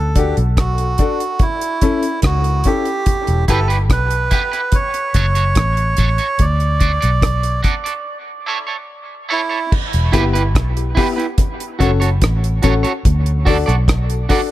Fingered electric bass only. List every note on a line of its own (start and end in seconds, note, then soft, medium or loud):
0.00 0.33 D2 medium
0.38 0.95 B1 medium
2.24 2.62 C#2 loud
3.28 3.47 E1 medium
3.49 3.90 G1 medium
3.90 4.28 B1 medium
5.15 5.54 F#1 loud
5.57 5.95 A1 medium
5.99 6.18 A1 medium
6.40 6.98 D2 loud
7.04 7.61 B1 medium
9.94 10.13 E1 medium
10.14 10.55 G1 medium
10.55 10.94 B1 medium
11.81 12.19 F#1 loud
12.22 12.60 A1 medium
12.64 12.83 A1 medium
13.05 13.64 D2 loud
13.68 14.26 B1 medium